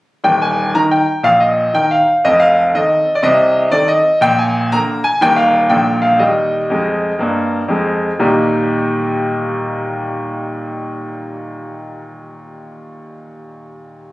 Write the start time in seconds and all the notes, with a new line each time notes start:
0.24 D#1 D#2 G5
0.42 G#5
0.74 D#3 D#4 A#4 A#5
0.91 G5
1.23 A#1 A#2 F5
1.40 D#5
1.74 D#3 D#4 A#4 G5
1.91 F5
2.25 F1 F2 D#5
2.40 F5
2.74 D#3 C4 A4 D#5
3.15 D5
3.23 C2 C3 D#5
3.71 D#3 C4 A4 D5
3.88 D#5
4.21 A#1 A#2 G5
4.39 G#5
4.72 D3 A#3 A#4 A#5
5.04 G#5
5.21 D#1 D#2 D#3 A#3 A#4 G5
5.36 F5
5.69 A#1 A#2 D3 A#3 A#4 G5
6.02 F5
6.19 D#2 G3 D#5
6.70 F2 G#3
7.19 G2 A#3
7.68 F2 G#3
8.19 D#2 A#2 G3 A#3 D#4 G4